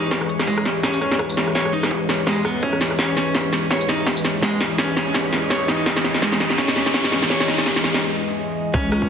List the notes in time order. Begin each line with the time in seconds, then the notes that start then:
Already playing: E3 G#3 D#4 C#5
0.11 kick, snare
0.21 cross-stick
0.29 closed hi-hat
0.40 cross-stick, snare
0.47 G#3, kick
0.58 cross-stick
0.65 snare, closed hi-hat
0.83 C#4, kick, cross-stick, snare
0.94 tambourine
1.01 C#4, cross-stick, closed hi-hat
1.11 snare
1.19 kick, cross-stick
1.30 tambourine
1.37 snare, closed hi-hat
1.48 cross-stick
1.55 C#5, kick, snare
1.65 cross-stick
1.73 D#4, closed hi-hat
1.83 cross-stick, snare
1.91 kick
2.09 cross-stick, snare, closed hi-hat
2.27 G#3, kick, cross-stick, snare
2.45 B3, cross-stick, closed hi-hat
2.63 C#4, kick
2.73 cross-stick
2.81 snare, closed hi-hat, tambourine
2.91 cross-stick
2.98 C#4 D#5, kick, snare, riser
3.17 C#4, snare, closed hi-hat
3.35 kick, snare
3.53 snare, closed hi-hat
3.71 C#5, kick, snare
3.81 tambourine
3.89 D#4, snare, closed hi-hat
4.07 kick, snare
4.17 tambourine
4.25 snare, closed hi-hat
4.42 G#3, kick, snare
4.61 snare, closed hi-hat
4.78 C#4, kick, snare
4.97 C#4, snare, closed hi-hat
5.14 kick, snare
5.33 snare, closed hi-hat
5.50 C#5, kick, snare
5.68 D#4, snare, closed hi-hat
5.86 kick, snare
5.96 snare
6.04 snare, closed hi-hat
6.14 snare
6.22 G#3, kick, snare
6.32 snare
6.40 snare, closed hi-hat
6.50 snare
6.58 C#4, kick, snare
6.68 snare, tambourine
6.76 C#4, snare, closed hi-hat
6.86 snare
6.94 kick, snare
7.04 snare, tambourine
7.12 snare, closed hi-hat
7.22 snare
7.30 C#5, kick, snare
7.40 snare
7.48 D#4, snare, closed hi-hat
7.58 snare
7.66 kick, snare
7.76 snare, closed hi-hat
7.84 snare, closed hi-hat
7.94 snare
8.74 C#2 E3 G#3 C#4 C#5, kick, cross-stick
8.92 C#4, cross-stick, closed hi-hat
9.02 kick